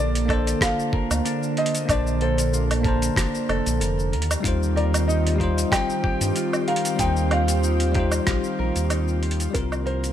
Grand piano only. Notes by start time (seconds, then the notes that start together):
Already playing: D5
0.62 F5
1.58 D#5
1.90 D5
2.22 C5
4.77 D5
5.08 D#5
5.72 G5
6.68 F5
7.00 G5
7.32 F5
9.54 A#4
9.86 C5